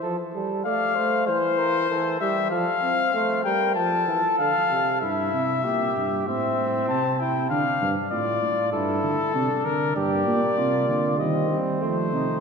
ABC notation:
X:1
M:4/4
L:1/8
Q:1/4=97
K:F
V:1 name="Cornet"
z2 f2 c3 e | f3 g a2 f2 | e4 e2 a g | f2 d2 A3 B |
[K:Gm] d4 e z c2 |]
V:2 name="Trumpet"
A A d c c B A G | A z c B A4 | E2 G2 C3 E | D2 F2 E2 D2 |
[K:Gm] G2 F2 C3 E |]
V:3 name="Trombone" clef=bass
F, G, A, A, E,2 E, G, | F, C A, G, F, E, D, C, | z8 | z8 |
[K:Gm] B,4 G, G, A,2 |]
V:4 name="Tuba" clef=bass
z8 | z8 | G,, C, B,, G,, A,, A,, C,2 | D, G,, A,, A,, G,, D, C, D, |
[K:Gm] G,, B,, C, D, E, z F, C, |]